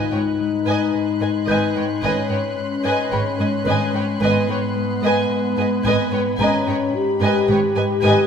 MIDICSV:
0, 0, Header, 1, 10, 480
1, 0, Start_track
1, 0, Tempo, 1090909
1, 1857, Time_signature, 4, 2, 24, 8
1, 3638, End_track
2, 0, Start_track
2, 0, Title_t, "Violin section"
2, 0, Program_c, 0, 48
2, 0, Note_on_c, 0, 83, 24
2, 0, Note_on_c, 0, 90, 24
2, 417, Note_on_c, 0, 84, 28
2, 2561, Note_off_c, 0, 90, 0
2, 2744, Note_off_c, 0, 83, 0
2, 2744, Note_off_c, 0, 84, 0
2, 2744, Note_on_c, 0, 83, 28
2, 3519, Note_off_c, 0, 83, 0
2, 3638, End_track
3, 0, Start_track
3, 0, Title_t, "Music box"
3, 0, Program_c, 1, 10
3, 651, Note_on_c, 1, 91, 30
3, 1378, Note_on_c, 1, 68, 23
3, 1378, Note_on_c, 1, 83, 34
3, 2077, Note_off_c, 1, 91, 0
3, 2800, Note_off_c, 1, 68, 0
3, 2800, Note_off_c, 1, 83, 0
3, 2818, Note_on_c, 1, 68, 24
3, 2819, Note_on_c, 1, 82, 38
3, 3638, Note_off_c, 1, 68, 0
3, 3638, Note_off_c, 1, 82, 0
3, 3638, End_track
4, 0, Start_track
4, 0, Title_t, "Violin section"
4, 0, Program_c, 2, 48
4, 0, Note_on_c, 2, 80, 34
4, 46, Note_off_c, 2, 80, 0
4, 53, Note_on_c, 2, 79, 25
4, 88, Note_off_c, 2, 79, 0
4, 297, Note_on_c, 2, 80, 36
4, 408, Note_off_c, 2, 80, 0
4, 535, Note_on_c, 2, 80, 30
4, 570, Note_off_c, 2, 80, 0
4, 657, Note_on_c, 2, 80, 38
4, 769, Note_off_c, 2, 80, 0
4, 775, Note_on_c, 2, 79, 25
4, 810, Note_off_c, 2, 79, 0
4, 892, Note_on_c, 2, 80, 39
4, 1006, Note_off_c, 2, 80, 0
4, 1009, Note_on_c, 2, 79, 29
4, 1044, Note_off_c, 2, 79, 0
4, 1249, Note_on_c, 2, 80, 42
4, 1364, Note_off_c, 2, 80, 0
4, 1372, Note_on_c, 2, 79, 29
4, 1407, Note_off_c, 2, 79, 0
4, 1495, Note_on_c, 2, 80, 29
4, 1530, Note_off_c, 2, 80, 0
4, 1615, Note_on_c, 2, 80, 38
4, 1728, Note_off_c, 2, 80, 0
4, 1737, Note_on_c, 2, 79, 36
4, 1772, Note_off_c, 2, 79, 0
4, 1857, Note_on_c, 2, 80, 34
4, 1968, Note_off_c, 2, 80, 0
4, 1979, Note_on_c, 2, 79, 26
4, 2015, Note_off_c, 2, 79, 0
4, 2216, Note_on_c, 2, 80, 43
4, 2328, Note_off_c, 2, 80, 0
4, 2455, Note_on_c, 2, 80, 33
4, 2490, Note_off_c, 2, 80, 0
4, 2571, Note_on_c, 2, 80, 43
4, 2686, Note_off_c, 2, 80, 0
4, 2695, Note_on_c, 2, 79, 31
4, 2730, Note_off_c, 2, 79, 0
4, 2814, Note_on_c, 2, 80, 44
4, 2927, Note_off_c, 2, 80, 0
4, 2935, Note_on_c, 2, 79, 35
4, 2971, Note_off_c, 2, 79, 0
4, 3172, Note_on_c, 2, 80, 39
4, 3286, Note_off_c, 2, 80, 0
4, 3292, Note_on_c, 2, 79, 36
4, 3328, Note_off_c, 2, 79, 0
4, 3414, Note_on_c, 2, 80, 40
4, 3449, Note_off_c, 2, 80, 0
4, 3529, Note_on_c, 2, 80, 51
4, 3638, Note_off_c, 2, 80, 0
4, 3638, End_track
5, 0, Start_track
5, 0, Title_t, "Violin section"
5, 0, Program_c, 3, 48
5, 0, Note_on_c, 3, 75, 37
5, 51, Note_off_c, 3, 75, 0
5, 55, Note_on_c, 3, 73, 22
5, 90, Note_off_c, 3, 73, 0
5, 298, Note_on_c, 3, 75, 35
5, 409, Note_off_c, 3, 75, 0
5, 535, Note_on_c, 3, 75, 25
5, 570, Note_off_c, 3, 75, 0
5, 653, Note_on_c, 3, 75, 35
5, 766, Note_off_c, 3, 75, 0
5, 777, Note_on_c, 3, 73, 28
5, 812, Note_off_c, 3, 73, 0
5, 892, Note_on_c, 3, 75, 37
5, 1006, Note_off_c, 3, 75, 0
5, 1012, Note_on_c, 3, 73, 30
5, 1047, Note_off_c, 3, 73, 0
5, 1256, Note_on_c, 3, 75, 40
5, 1368, Note_off_c, 3, 75, 0
5, 1375, Note_on_c, 3, 73, 31
5, 1410, Note_off_c, 3, 73, 0
5, 1497, Note_on_c, 3, 75, 27
5, 1533, Note_off_c, 3, 75, 0
5, 1623, Note_on_c, 3, 75, 38
5, 1732, Note_off_c, 3, 75, 0
5, 1741, Note_on_c, 3, 73, 30
5, 1776, Note_off_c, 3, 73, 0
5, 1865, Note_on_c, 3, 75, 43
5, 1973, Note_off_c, 3, 75, 0
5, 1981, Note_on_c, 3, 73, 25
5, 2016, Note_off_c, 3, 73, 0
5, 2217, Note_on_c, 3, 75, 45
5, 2328, Note_off_c, 3, 75, 0
5, 2465, Note_on_c, 3, 75, 27
5, 2501, Note_off_c, 3, 75, 0
5, 2581, Note_on_c, 3, 75, 43
5, 2691, Note_off_c, 3, 75, 0
5, 2698, Note_on_c, 3, 73, 34
5, 2733, Note_off_c, 3, 73, 0
5, 2826, Note_on_c, 3, 75, 42
5, 2933, Note_off_c, 3, 75, 0
5, 2945, Note_on_c, 3, 73, 34
5, 2980, Note_off_c, 3, 73, 0
5, 3184, Note_on_c, 3, 75, 45
5, 3292, Note_off_c, 3, 75, 0
5, 3304, Note_on_c, 3, 73, 39
5, 3339, Note_off_c, 3, 73, 0
5, 3417, Note_on_c, 3, 75, 30
5, 3453, Note_off_c, 3, 75, 0
5, 3544, Note_on_c, 3, 75, 44
5, 3638, Note_off_c, 3, 75, 0
5, 3638, End_track
6, 0, Start_track
6, 0, Title_t, "Viola section"
6, 0, Program_c, 4, 48
6, 0, Note_on_c, 4, 71, 33
6, 47, Note_off_c, 4, 71, 0
6, 56, Note_on_c, 4, 71, 27
6, 91, Note_off_c, 4, 71, 0
6, 290, Note_on_c, 4, 71, 30
6, 405, Note_off_c, 4, 71, 0
6, 534, Note_on_c, 4, 71, 28
6, 569, Note_off_c, 4, 71, 0
6, 656, Note_on_c, 4, 71, 35
6, 768, Note_off_c, 4, 71, 0
6, 779, Note_on_c, 4, 71, 26
6, 814, Note_off_c, 4, 71, 0
6, 897, Note_on_c, 4, 71, 39
6, 1008, Note_off_c, 4, 71, 0
6, 1019, Note_on_c, 4, 71, 26
6, 1055, Note_off_c, 4, 71, 0
6, 1255, Note_on_c, 4, 71, 42
6, 1368, Note_off_c, 4, 71, 0
6, 1373, Note_on_c, 4, 71, 31
6, 1409, Note_off_c, 4, 71, 0
6, 1497, Note_on_c, 4, 71, 26
6, 1533, Note_off_c, 4, 71, 0
6, 1614, Note_on_c, 4, 71, 39
6, 1724, Note_off_c, 4, 71, 0
6, 1730, Note_on_c, 4, 71, 30
6, 1765, Note_off_c, 4, 71, 0
6, 1855, Note_on_c, 4, 71, 36
6, 1967, Note_off_c, 4, 71, 0
6, 1979, Note_on_c, 4, 71, 26
6, 2014, Note_off_c, 4, 71, 0
6, 2219, Note_on_c, 4, 71, 39
6, 2330, Note_off_c, 4, 71, 0
6, 2461, Note_on_c, 4, 71, 32
6, 2497, Note_off_c, 4, 71, 0
6, 2583, Note_on_c, 4, 71, 43
6, 2692, Note_off_c, 4, 71, 0
6, 2699, Note_on_c, 4, 71, 31
6, 2734, Note_off_c, 4, 71, 0
6, 2820, Note_on_c, 4, 71, 39
6, 2930, Note_off_c, 4, 71, 0
6, 2942, Note_on_c, 4, 71, 34
6, 2978, Note_off_c, 4, 71, 0
6, 3183, Note_on_c, 4, 71, 46
6, 3292, Note_off_c, 4, 71, 0
6, 3305, Note_on_c, 4, 71, 41
6, 3340, Note_off_c, 4, 71, 0
6, 3418, Note_on_c, 4, 71, 37
6, 3453, Note_off_c, 4, 71, 0
6, 3543, Note_on_c, 4, 71, 41
6, 3638, Note_off_c, 4, 71, 0
6, 3638, End_track
7, 0, Start_track
7, 0, Title_t, "French horn section"
7, 0, Program_c, 5, 60
7, 0, Note_on_c, 5, 63, 47
7, 895, Note_off_c, 5, 63, 0
7, 898, Note_on_c, 5, 61, 47
7, 1857, Note_on_c, 5, 59, 54
7, 1858, Note_off_c, 5, 61, 0
7, 2799, Note_off_c, 5, 59, 0
7, 2819, Note_on_c, 5, 61, 49
7, 3058, Note_off_c, 5, 61, 0
7, 3062, Note_on_c, 5, 67, 61
7, 3638, Note_off_c, 5, 67, 0
7, 3638, End_track
8, 0, Start_track
8, 0, Title_t, "Cello section"
8, 0, Program_c, 6, 48
8, 52, Note_on_c, 6, 44, 25
8, 87, Note_off_c, 6, 44, 0
8, 291, Note_on_c, 6, 44, 38
8, 326, Note_off_c, 6, 44, 0
8, 530, Note_on_c, 6, 44, 32
8, 566, Note_off_c, 6, 44, 0
8, 649, Note_on_c, 6, 44, 36
8, 684, Note_off_c, 6, 44, 0
8, 772, Note_on_c, 6, 44, 25
8, 807, Note_off_c, 6, 44, 0
8, 891, Note_on_c, 6, 44, 38
8, 926, Note_off_c, 6, 44, 0
8, 1011, Note_on_c, 6, 44, 25
8, 1046, Note_off_c, 6, 44, 0
8, 1250, Note_on_c, 6, 44, 38
8, 1286, Note_off_c, 6, 44, 0
8, 1375, Note_on_c, 6, 44, 29
8, 1411, Note_off_c, 6, 44, 0
8, 1495, Note_on_c, 6, 44, 29
8, 1530, Note_off_c, 6, 44, 0
8, 1614, Note_on_c, 6, 44, 43
8, 1650, Note_off_c, 6, 44, 0
8, 1733, Note_on_c, 6, 44, 27
8, 1768, Note_off_c, 6, 44, 0
8, 1849, Note_on_c, 6, 44, 41
8, 1885, Note_off_c, 6, 44, 0
8, 1969, Note_on_c, 6, 44, 28
8, 2005, Note_off_c, 6, 44, 0
8, 2209, Note_on_c, 6, 44, 44
8, 2244, Note_off_c, 6, 44, 0
8, 2450, Note_on_c, 6, 44, 35
8, 2485, Note_off_c, 6, 44, 0
8, 2573, Note_on_c, 6, 44, 41
8, 2608, Note_off_c, 6, 44, 0
8, 2692, Note_on_c, 6, 44, 30
8, 2727, Note_off_c, 6, 44, 0
8, 2814, Note_on_c, 6, 44, 46
8, 2850, Note_off_c, 6, 44, 0
8, 2935, Note_on_c, 6, 44, 30
8, 2970, Note_off_c, 6, 44, 0
8, 3170, Note_on_c, 6, 44, 43
8, 3205, Note_off_c, 6, 44, 0
8, 3294, Note_on_c, 6, 44, 34
8, 3329, Note_off_c, 6, 44, 0
8, 3415, Note_on_c, 6, 44, 34
8, 3450, Note_off_c, 6, 44, 0
8, 3536, Note_on_c, 6, 44, 50
8, 3571, Note_off_c, 6, 44, 0
8, 3638, End_track
9, 0, Start_track
9, 0, Title_t, "Harp"
9, 0, Program_c, 7, 46
9, 0, Note_on_c, 7, 44, 38
9, 175, Note_on_c, 7, 56, 32
9, 408, Note_off_c, 7, 44, 0
9, 414, Note_on_c, 7, 44, 29
9, 650, Note_off_c, 7, 44, 0
9, 655, Note_on_c, 7, 44, 42
9, 891, Note_off_c, 7, 44, 0
9, 896, Note_on_c, 7, 44, 23
9, 1127, Note_off_c, 7, 44, 0
9, 1133, Note_on_c, 7, 44, 27
9, 1364, Note_off_c, 7, 44, 0
9, 1369, Note_on_c, 7, 44, 40
9, 1603, Note_off_c, 7, 56, 0
9, 1608, Note_on_c, 7, 56, 31
9, 1843, Note_off_c, 7, 44, 0
9, 1849, Note_on_c, 7, 44, 44
9, 2085, Note_off_c, 7, 56, 0
9, 2090, Note_on_c, 7, 56, 37
9, 2321, Note_off_c, 7, 44, 0
9, 2327, Note_on_c, 7, 44, 34
9, 2560, Note_off_c, 7, 44, 0
9, 2565, Note_on_c, 7, 44, 48
9, 2803, Note_off_c, 7, 44, 0
9, 2808, Note_on_c, 7, 44, 31
9, 3042, Note_off_c, 7, 44, 0
9, 3048, Note_on_c, 7, 44, 32
9, 3285, Note_off_c, 7, 44, 0
9, 3291, Note_on_c, 7, 44, 47
9, 3524, Note_off_c, 7, 56, 0
9, 3529, Note_on_c, 7, 56, 35
9, 3638, Note_off_c, 7, 44, 0
9, 3638, Note_off_c, 7, 56, 0
9, 3638, End_track
10, 0, Start_track
10, 0, Title_t, "Double bass section"
10, 0, Program_c, 8, 48
10, 654, Note_on_c, 8, 32, 38
10, 689, Note_off_c, 8, 32, 0
10, 896, Note_on_c, 8, 32, 40
10, 931, Note_off_c, 8, 32, 0
10, 1376, Note_on_c, 8, 32, 26
10, 1411, Note_off_c, 8, 32, 0
10, 1614, Note_on_c, 8, 32, 44
10, 1649, Note_off_c, 8, 32, 0
10, 1857, Note_on_c, 8, 32, 42
10, 1892, Note_off_c, 8, 32, 0
10, 2578, Note_on_c, 8, 32, 46
10, 2614, Note_off_c, 8, 32, 0
10, 2817, Note_on_c, 8, 32, 45
10, 2852, Note_off_c, 8, 32, 0
10, 3298, Note_on_c, 8, 32, 35
10, 3333, Note_off_c, 8, 32, 0
10, 3537, Note_on_c, 8, 32, 49
10, 3572, Note_off_c, 8, 32, 0
10, 3638, End_track
0, 0, End_of_file